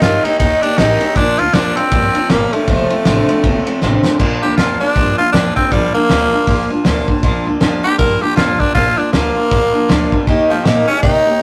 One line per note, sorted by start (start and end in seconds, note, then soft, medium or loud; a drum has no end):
0.01 0.17 G2 medium
0.01 0.24 D#3 medium
0.01 0.22 D#3 medium
0.01 0.25 A#3 medium
0.01 0.22 C4 loud
0.01 0.24 D#4 medium
0.01 0.26 F4 medium
0.01 0.23 G4 medium
0.01 snare loud
0.01 ride medium
0.23 0.38 D#3 medium
0.23 0.39 A#3 soft
0.23 0.39 C4 medium
0.23 0.39 D#4 loud
0.23 0.40 D#4 soft
0.23 0.40 G4 medium
0.23 muted upright bass stroke medium
0.23 ride medium
0.39 0.56 D#2 loud
0.39 0.62 D#3 medium
0.39 0.60 D#3 medium
0.39 0.63 A#3 medium
0.39 0.61 A#3 medium
0.39 0.63 D#4 medium
0.39 0.61 G4 medium
0.39 kick loud
0.39 ride loud
0.62 0.76 D#3 medium
0.62 0.76 A#3 medium
0.62 0.77 A#3 soft
0.62 0.79 D4 loud
0.62 0.78 D#4 medium
0.62 0.78 G4 medium
0.62 muted upright bass stroke medium
0.62 ride medium
0.77 0.94 A1 loud
0.77 0.98 D#3 medium
0.77 1.01 D#3 medium
0.77 1.01 A#3 medium
0.77 0.99 C4 loud
0.77 1.17 D#4 loud
0.77 1.01 D#4 medium
0.77 0.99 G4 loud
0.77 snare loud
0.77 ride medium
1.00 1.14 D#3 medium
1.00 1.15 A#3 soft
1.00 1.15 C4 loud
1.00 1.16 D#4 medium
1.00 1.16 G4 medium
1.00 muted upright bass stroke medium
1.00 ride medium
1.16 1.32 A#1 loud
1.16 1.36 A#2 medium
1.16 1.39 A#2 medium
1.16 1.37 F3 medium
1.16 1.39 F3 medium
1.16 1.39 A#3 medium
1.16 1.40 D4 loud
1.16 1.39 D4 medium
1.16 1.37 F4 medium
1.16 kick loud
1.16 ride medium
1.39 1.49 D2 loud
1.39 1.52 A#2 medium
1.39 1.53 F3 medium
1.39 1.54 A#3 soft
1.39 1.54 D4 soft
1.39 1.54 F4 medium
1.39 1.55 F4 loud
1.39 ride medium
1.53 1.70 F2 medium
1.53 1.77 A#2 medium
1.53 1.75 A#2 medium
1.53 1.77 F3 medium
1.53 1.75 G3 loud
1.53 1.77 A#3 medium
1.53 1.78 D4 medium
1.53 1.76 D4 medium
1.53 1.75 F4 loud
1.53 snare loud
1.53 ride medium
1.76 1.90 A#2 medium
1.76 1.91 G3 medium
1.76 1.91 A#3 soft
1.76 2.31 C4 loud
1.76 1.91 D4 soft
1.76 1.92 F4 medium
1.76 muted upright bass stroke medium
1.76 ride medium
1.91 2.08 G2 medium
1.91 2.12 A#2 loud
1.91 2.15 F3 medium
1.91 2.13 F3 loud
1.91 2.15 A#3 medium
1.91 2.14 D4 medium
1.91 2.13 F4 medium
1.91 kick loud
1.91 ride medium
2.14 2.29 A#2 medium
2.14 2.29 F3 medium
2.14 2.29 A#3 soft
2.14 2.30 D4 soft
2.14 2.30 F4 medium
2.14 muted upright bass stroke medium
2.14 ride medium
2.29 2.46 G1 medium
2.29 2.53 A#2 medium
2.29 2.51 A#2 medium
2.29 2.53 F3 medium
2.29 2.51 G3 loud
2.29 2.55 A#3 medium
2.29 2.53 A#3 medium
2.29 2.53 D4 medium
2.29 2.52 F4 medium
2.29 snare loud
2.29 ride medium
2.53 2.66 A#2 medium
2.53 2.66 G3 medium
2.53 3.82 A3 medium
2.53 2.68 A#3 soft
2.53 2.68 D4 medium
2.53 2.68 F4 medium
2.53 muted upright bass stroke medium
2.53 ride medium
2.67 2.84 F1 loud
2.67 2.88 F2 medium
2.67 2.91 F2 medium
2.67 2.89 C3 medium
2.67 2.91 C3 medium
2.67 2.91 F3 medium
2.67 2.91 A3 medium
2.67 2.90 C4 medium
2.67 2.89 F4 medium
2.67 kick loud
2.67 ride medium
2.90 3.04 F2 medium
2.90 3.04 C3 medium
2.90 3.05 F3 soft
2.90 3.05 A3 medium
2.90 3.05 C4 soft
2.90 3.06 F4 medium
2.90 muted upright bass stroke medium
2.90 ride medium
3.05 3.22 A1 medium
3.05 3.26 F2 medium
3.05 3.29 F2 medium
3.05 3.29 C3 medium
3.05 3.27 D3 medium
3.05 3.29 F3 medium
3.05 3.29 A3 loud
3.05 3.29 C4 medium
3.05 3.28 F4 loud
3.05 snare loud
3.05 ride medium
3.29 3.42 F2 medium
3.29 3.43 D3 medium
3.29 3.42 F3 medium
3.29 3.43 A3 medium
3.29 3.44 C4 medium
3.29 3.44 F4 medium
3.29 muted upright bass stroke medium
3.29 ride medium
3.43 3.60 F1 loud
3.43 3.65 F2 medium
3.43 3.65 C3 loud
3.43 3.66 F3 medium
3.43 3.67 A3 medium
3.43 3.66 C4 medium
3.43 3.65 F4 medium
3.43 kick loud
3.43 ride medium
3.66 3.80 F2 medium
3.66 3.81 C3 medium
3.66 3.81 F3 soft
3.66 3.81 A3 medium
3.66 3.82 C4 medium
3.66 3.82 F4 medium
3.66 ride medium
3.82 3.98 A1 medium
3.82 4.05 F2 medium
3.82 4.02 F2 medium
3.82 4.05 C3 medium
3.82 4.03 D3 medium
3.82 4.05 F3 medium
3.82 4.05 A3 medium
3.82 4.04 C4 loud
3.82 4.03 F4 loud
3.82 snare medium
4.04 4.18 F2 medium
4.04 4.18 D3 medium
4.04 4.18 F3 medium
4.04 4.20 A3 medium
4.04 4.20 C4 medium
4.04 4.20 F4 medium
4.04 muted upright bass stroke medium
4.04 snare medium
4.19 4.36 A#1 loud
4.19 4.42 A#2 loud
4.19 4.40 A#2 medium
4.19 4.43 F3 medium
4.19 4.41 F3 medium
4.19 4.43 A#3 medium
4.19 4.42 D4 loud
4.19 4.41 F4 loud
4.19 kick loud
4.19 crash medium
4.42 4.53 D2 medium
4.42 4.56 A#2 medium
4.42 4.56 F3 medium
4.42 4.57 A#3 soft
4.42 4.57 D4 medium
4.42 4.58 F4 medium
4.42 4.56 G4 medium
4.57 4.73 F2 medium
4.57 4.81 A#2 medium
4.57 4.78 A#2 medium
4.57 4.81 F3 medium
4.57 4.79 G3 medium
4.57 4.81 A#3 medium
4.57 4.80 D4 medium
4.57 4.80 F4 medium
4.57 4.79 F4 medium
4.57 snare loud
4.57 open hi-hat medium
4.80 4.94 A#2 medium
4.80 4.94 G3 medium
4.80 4.95 A#3 soft
4.80 5.17 D4 loud
4.80 4.96 D4 soft
4.80 4.96 F4 medium
4.80 muted upright bass stroke medium
4.96 5.12 G2 medium
4.96 5.16 A#2 loud
4.96 5.19 F3 medium
4.96 5.17 F3 loud
4.96 5.19 A#3 medium
4.96 5.18 D4 medium
4.96 5.17 F4 medium
4.96 kick loud
4.96 open hi-hat medium
5.18 5.32 A#2 medium
5.18 5.32 F3 medium
5.18 5.33 A#3 soft
5.18 5.33 D4 soft
5.18 5.32 F4 loud
5.18 5.33 F4 medium
5.18 muted upright bass stroke medium
5.32 5.49 F2 loud
5.32 5.54 A#2 medium
5.32 5.56 A#2 medium
5.32 5.57 F3 medium
5.32 5.54 G3 loud
5.32 5.57 A#3 medium
5.32 5.55 D4 medium
5.32 5.56 D4 medium
5.32 5.54 F4 loud
5.32 snare loud
5.32 open hi-hat soft
5.56 5.70 A#2 medium
5.56 5.70 G3 medium
5.56 5.71 A#3 soft
5.56 5.73 C4 loud
5.56 5.71 D4 medium
5.56 5.71 F4 medium
5.56 kick medium
5.71 5.88 A#1 loud
5.71 5.94 A#2 medium
5.71 5.92 A#2 medium
5.71 5.94 F3 medium
5.71 5.93 F3 medium
5.71 5.94 G3 medium
5.71 5.95 A#3 medium
5.71 5.94 D4 medium
5.71 5.92 F4 medium
5.71 kick loud
5.71 open hi-hat soft
5.93 6.08 A#2 medium
5.93 6.08 F3 medium
5.93 6.68 A#3 loud
5.93 6.09 A#3 soft
5.93 6.09 D4 soft
5.93 6.09 F4 medium
5.93 muted upright bass stroke medium
6.09 6.25 D2 medium
6.09 6.32 A#2 medium
6.09 6.30 A#2 medium
6.09 6.32 F3 medium
6.09 6.30 G3 medium
6.09 6.33 A#3 medium
6.09 6.32 D4 medium
6.09 6.31 F4 medium
6.09 snare loud
6.09 open hi-hat medium
6.32 6.45 A#2 medium
6.32 6.46 G3 medium
6.32 6.47 A#3 soft
6.32 6.47 D4 medium
6.32 6.47 F4 medium
6.32 muted upright bass stroke medium
6.46 6.63 A#1 loud
6.46 6.67 A#2 loud
6.46 6.68 F3 loud
6.46 6.70 F3 medium
6.46 6.71 A#3 medium
6.46 6.70 D4 medium
6.46 6.69 F4 medium
6.46 kick loud
6.46 open hi-hat medium
6.69 6.83 A#2 medium
6.69 6.84 F3 medium
6.69 6.85 A#3 soft
6.69 6.85 D4 soft
6.69 6.85 F4 medium
6.69 muted upright bass stroke medium
6.84 7.02 D2 medium
6.84 7.05 A#2 medium
6.84 7.08 A#2 loud
6.84 7.08 F3 medium
6.84 7.05 G3 medium
6.84 7.09 A#3 loud
6.84 7.08 D4 loud
6.84 7.07 F4 loud
6.84 snare loud
6.84 open hi-hat medium
7.08 7.21 A#2 medium
7.08 7.22 G3 medium
7.08 7.23 A#3 medium
7.08 7.23 D4 medium
7.08 7.23 F4 medium
7.08 kick medium
7.22 7.39 A#1 loud
7.22 7.43 A#2 medium
7.22 7.46 A#2 medium
7.22 7.44 F3 medium
7.22 7.46 F3 loud
7.22 7.46 A#3 medium
7.22 7.46 D4 loud
7.22 7.44 F4 loud
7.22 kick loud
7.22 open hi-hat medium
7.45 7.57 D2 medium
7.45 7.59 A#2 medium
7.45 7.60 F3 medium
7.45 7.60 A#3 soft
7.45 7.60 D4 medium
7.45 7.61 F4 medium
7.60 7.77 F2 loud
7.60 7.84 A#2 medium
7.60 7.82 A#2 medium
7.60 7.84 F3 loud
7.60 7.82 G3 medium
7.60 7.84 A#3 medium
7.60 7.83 D4 loud
7.60 7.82 F4 loud
7.60 snare loud
7.60 open hi-hat medium
7.83 7.97 A#2 medium
7.83 7.98 G3 medium
7.83 7.98 A#3 soft
7.83 7.98 D4 medium
7.83 7.99 F4 medium
7.83 7.98 G4 loud
7.98 8.15 G2 medium
7.98 8.20 A#2 medium
7.98 8.21 F3 medium
7.98 8.20 F3 loud
7.98 8.22 A#3 medium
7.98 8.21 D4 medium
7.98 8.20 F4 medium
7.98 8.23 A#4 medium
7.98 kick loud
7.98 open hi-hat medium
8.21 8.36 A#2 medium
8.21 8.36 F3 medium
8.21 8.35 A#3 soft
8.21 8.36 D4 medium
8.21 8.36 F4 medium
8.21 8.36 G4 loud
8.36 8.53 F2 medium
8.36 8.59 A#2 medium
8.36 8.58 A#2 medium
8.36 8.59 F3 loud
8.36 8.58 G3 loud
8.36 8.60 A#3 medium
8.36 8.59 D4 medium
8.36 8.61 F4 medium
8.36 8.58 F4 medium
8.36 snare loud
8.36 open hi-hat soft
8.59 8.73 A#2 medium
8.59 8.73 G3 medium
8.59 8.74 A#3 soft
8.59 8.74 D4 loud
8.59 8.75 D4 soft
8.59 8.75 F4 medium
8.59 kick medium
8.75 8.91 A#1 loud
8.75 8.98 A#2 medium
8.75 8.95 A#2 medium
8.75 8.98 F3 medium
8.75 8.96 F3 medium
8.75 8.98 A#3 medium
8.75 8.98 D4 medium
8.75 8.99 F4 loud
8.75 8.97 F4 medium
8.75 kick loud
8.75 open hi-hat medium
8.97 9.11 A#2 medium
8.97 9.11 F3 medium
8.97 9.12 A#3 soft
8.97 9.12 D4 medium
8.97 9.13 D4 soft
8.97 9.13 F4 soft
8.97 muted upright bass stroke medium
9.13 9.29 D2 medium
9.13 9.33 A#2 medium
9.13 9.36 A#2 medium
9.13 9.36 F3 medium
9.13 9.34 G3 medium
9.13 10.23 A#3 loud
9.13 9.36 A#3 medium
9.13 9.36 D4 medium
9.13 9.34 F4 loud
9.13 snare loud
9.13 open hi-hat medium
9.36 9.49 A#2 medium
9.36 9.50 G3 medium
9.36 9.50 A#3 soft
9.36 9.51 D4 soft
9.36 9.51 F4 medium
9.36 muted upright bass stroke medium
9.50 9.67 A#1 medium
9.50 9.72 A#2 medium
9.50 9.73 F3 medium
9.50 9.72 F3 loud
9.50 9.74 A#3 medium
9.50 9.73 D4 medium
9.50 9.72 F4 medium
9.50 kick loud
9.50 open hi-hat medium
9.73 9.87 A#2 medium
9.73 9.87 F3 medium
9.73 9.88 A#3 soft
9.73 9.89 D4 medium
9.73 9.88 F4 medium
9.73 muted upright bass stroke medium
9.89 10.05 D2 medium
9.89 10.11 A#2 loud
9.89 10.10 A#2 medium
9.89 10.12 F3 loud
9.89 10.10 G3 loud
9.89 10.12 A#3 medium
9.89 10.12 D4 loud
9.89 10.11 F4 loud
9.89 snare loud
9.89 open hi-hat soft
10.12 10.25 A#2 medium
10.12 10.26 G3 loud
10.12 10.27 A#3 soft
10.12 10.27 D4 medium
10.12 10.27 F4 medium
10.12 kick medium
10.27 10.43 D#2 loud
10.27 10.47 D#3 medium
10.27 10.50 D#3 medium
10.27 10.47 A#3 medium
10.27 10.50 A#3 medium
10.27 10.50 D#4 loud
10.27 10.49 G4 loud
10.27 kick loud
10.27 open hi-hat soft
10.49 10.60 G2 medium
10.49 10.63 D#3 medium
10.49 10.66 F3 loud
10.49 10.63 A#3 medium
10.49 10.65 A#3 soft
10.49 10.65 D#4 medium
10.49 10.65 G4 medium
10.64 10.81 A#2 medium
10.64 10.85 D#3 medium
10.64 10.88 D#3 medium
10.64 10.87 A#3 medium
10.64 10.88 A#3 medium
10.64 10.85 C4 loud
10.64 10.88 D#4 medium
10.64 10.87 G4 medium
10.64 snare loud
10.64 open hi-hat medium
10.87 11.01 D#3 medium
10.87 11.02 A#3 soft
10.87 11.01 C4 medium
10.87 11.02 C#4 loud
10.87 11.03 D#4 medium
10.87 11.03 G4 medium
10.87 muted upright bass stroke medium
11.02 11.19 C3 medium
11.02 11.23 D#3 medium
11.02 11.26 D#3 medium
11.02 11.23 A#3 medium
11.02 11.26 A#3 medium
11.02 11.42 D#4 loud
11.02 11.25 D#4 medium
11.02 11.25 G4 medium
11.02 kick loud
11.02 open hi-hat medium
11.26 11.39 D#3 medium
11.26 11.39 A#3 loud
11.26 11.40 A#3 soft
11.26 11.41 D#4 soft
11.26 11.41 G4 medium
11.26 muted upright bass stroke medium